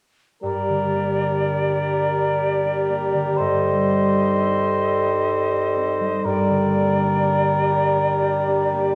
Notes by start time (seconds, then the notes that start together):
0.42 G2 G3 G4 A#4 D5
0.69 D3
0.94 A#3
1.20 D4
1.45 A#4
1.70 D4
1.94 A#4
2.18 D4
2.42 A#4
2.65 D4
2.89 A#3
3.14 D3
3.37 G2 A4 C5 D#5
3.63 G3
3.88 C4
4.13 D#4
4.35 A4
4.58 D#4
4.82 A4
5.05 D#4
5.29 A4
5.53 D#4
5.76 C4
6.00 G3
6.24 G2 G3 A#4 D5
6.50 D3
6.74 A#3
6.98 D4
7.22 G4
7.47 D4
7.72 G4
7.97 D4
8.22 G4
8.48 D4
8.73 A#3